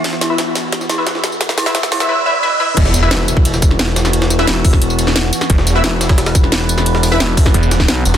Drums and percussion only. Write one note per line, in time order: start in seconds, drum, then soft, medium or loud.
0.04 snare medium
0.04 closed hi-hat medium
0.04 ride medium
0.13 snare medium
0.21 snare medium
0.21 closed hi-hat medium
0.21 ride medium
0.21 tambourine medium
0.38 snare medium
0.38 snare loud
0.38 closed hi-hat medium
0.38 ride medium
0.55 snare medium
0.55 closed hi-hat medium
0.55 ride medium
0.55 tambourine medium
0.72 snare medium
0.72 closed hi-hat medium
0.72 ride medium
0.81 snare soft
0.81 tambourine soft
0.90 snare medium
0.90 closed hi-hat medium
0.90 ride medium
0.90 tambourine medium
1.07 snare medium
1.07 snare loud
1.07 closed hi-hat medium
1.07 ride medium
1.15 snare medium
1.24 snare medium
1.24 closed hi-hat medium
1.24 ride medium
1.24 tambourine medium
1.32 tambourine soft
1.41 snare medium
1.41 closed hi-hat medium
1.41 ride medium
1.49 snare medium
1.58 snare loud
1.58 snare soft
1.58 closed hi-hat medium
1.58 open hi-hat medium
1.58 tambourine medium
1.66 snare medium
1.66 ride soft
1.75 snare loud
1.75 closed hi-hat medium
1.75 ride medium
1.83 snare medium
1.83 ride soft
1.92 snare loud
1.92 open hi-hat medium
1.92 ride medium
1.92 tambourine medium
2.00 snare medium
2.77 kick loud
2.77 closed hi-hat loud
2.77 crash loud
2.77 ride medium
2.86 snare medium
2.94 closed hi-hat medium
2.94 ride medium
2.94 tambourine medium
3.11 snare loud
3.11 closed hi-hat loud
3.11 ride medium
3.28 closed hi-hat medium
3.28 ride medium
3.28 tambourine medium
3.37 kick loud
3.45 closed hi-hat loud
3.45 ride medium
3.54 snare soft
3.54 tambourine soft
3.62 kick loud
3.62 closed hi-hat medium
3.62 ride medium
3.62 tambourine medium
3.71 snare soft
3.79 snare loud
3.79 closed hi-hat loud
3.79 ride medium
3.88 snare medium
3.96 snare loud
3.96 closed hi-hat medium
3.96 ride medium
3.96 tambourine medium
4.05 snare medium
4.05 tambourine soft
4.13 closed hi-hat loud
4.13 ride medium
4.22 snare loud
4.22 ride medium
4.30 snare medium
4.30 closed hi-hat medium
4.30 tambourine medium
4.39 snare soft
4.39 ride medium
4.47 snare loud
4.47 closed hi-hat loud
4.47 ride medium
4.56 snare medium
4.65 kick loud
4.65 open hi-hat medium
4.65 ride medium
4.65 tambourine medium
4.73 kick loud
4.73 snare medium
4.82 closed hi-hat loud
4.82 ride medium
4.90 tambourine soft
4.99 closed hi-hat medium
4.99 ride medium
4.99 tambourine medium
5.07 snare soft
5.16 snare loud
5.16 closed hi-hat medium
5.16 ride medium
5.24 snare medium
5.33 closed hi-hat medium
5.33 ride medium
5.33 tambourine medium
5.41 snare soft
5.41 tambourine soft
5.50 kick loud
5.50 closed hi-hat medium
5.50 ride medium
5.58 snare medium
5.67 closed hi-hat medium
5.67 ride medium
5.67 tambourine medium
5.84 snare loud
5.84 closed hi-hat medium
5.84 ride medium
6.01 snare loud
6.01 closed hi-hat medium
6.01 ride medium
6.01 tambourine medium
6.09 kick loud
6.09 snare loud
6.09 ride medium
6.18 snare loud
6.18 closed hi-hat medium
6.18 ride medium
6.26 snare loud
6.26 ride medium
6.26 tambourine soft
6.35 kick loud
6.35 closed hi-hat medium
6.35 ride medium
6.35 tambourine medium
6.44 snare soft
6.52 snare loud
6.52 closed hi-hat medium
6.52 ride medium
6.61 snare medium
6.69 closed hi-hat medium
6.69 ride medium
6.69 tambourine medium
6.78 snare soft
6.78 tambourine soft
6.86 closed hi-hat medium
6.86 ride medium
6.95 snare medium
7.03 snare soft
7.03 closed hi-hat medium
7.03 open hi-hat medium
7.03 tambourine medium
7.12 snare soft
7.12 ride soft
7.20 snare loud
7.20 closed hi-hat medium
7.20 ride medium
7.29 ride soft
7.37 kick loud
7.37 open hi-hat medium
7.37 ride medium
7.37 tambourine medium
7.46 kick loud
7.46 snare soft
7.46 snare medium
7.54 closed hi-hat loud
7.54 ride medium
7.63 tambourine soft
7.71 snare loud
7.71 closed hi-hat medium
7.71 ride medium
7.71 tambourine medium
7.80 kick medium
7.80 snare soft
7.88 snare loud
7.88 closed hi-hat medium
7.88 ride medium
8.05 closed hi-hat medium
8.05 ride medium
8.05 tambourine medium
8.14 snare soft
8.14 tambourine soft